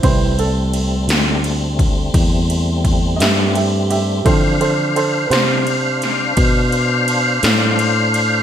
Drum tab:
RD |xxxxxxxxxxxx|xxxxxxxxxxxx|
SD |---o-----o--|---o-o---o--|
BD |o----oo-o---|o-----o-----|